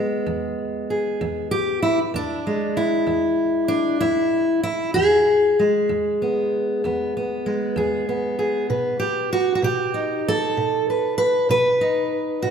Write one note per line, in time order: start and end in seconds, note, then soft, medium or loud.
0.00 1.54 G#3 soft
0.00 2.15 B3 soft
0.00 0.58 G#4 loud
0.26 0.83 E2 medium
0.90 1.51 G#4 soft
1.21 1.77 E2 medium
1.51 1.82 G4 medium
1.82 1.98 E4 medium
2.14 2.71 E2 medium
2.14 2.78 D4 medium
2.47 4.92 G#3 soft
2.77 3.99 E4 medium
3.07 3.64 E2 medium
3.68 4.01 D4 medium
4.01 4.58 E2 medium
4.01 4.62 E4 medium
4.63 4.94 E4 medium
4.94 5.52 E2 medium
4.94 7.75 G#4 medium
5.59 7.45 G#3 soft
5.89 6.45 E2 medium
6.22 6.85 B3 soft
6.84 7.39 E2 medium
6.84 7.16 B3 soft
7.17 8.08 B3 soft
7.46 8.66 G#3 soft
7.76 8.32 E2 medium
7.76 8.38 G#4 soft
8.09 8.99 B3 soft
8.39 8.66 G#4 soft
8.70 9.26 B2 medium
8.70 10.28 B4 soft
9.00 9.31 G4 medium
9.33 9.54 F#4 medium
9.55 9.63 F#4 medium
9.62 10.19 B2 medium
9.62 10.26 G4 medium
9.94 11.80 D#4 soft
10.28 10.89 A4 loud
10.57 11.12 B2 medium
10.90 11.17 B4 soft
11.18 11.49 B4 loud
11.49 12.05 B2 medium
11.49 12.51 B4 medium
11.81 12.39 D#4 soft
12.42 12.51 B2 medium
12.42 12.51 F#4 medium